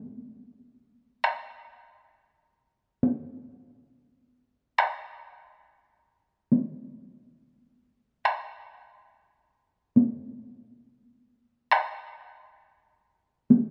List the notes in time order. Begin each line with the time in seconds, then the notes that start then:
1.24 taiko rim
3.03 taiko high
4.78 taiko rim
6.52 taiko high
8.25 taiko rim
9.96 taiko high
11.71 taiko rim
13.50 taiko high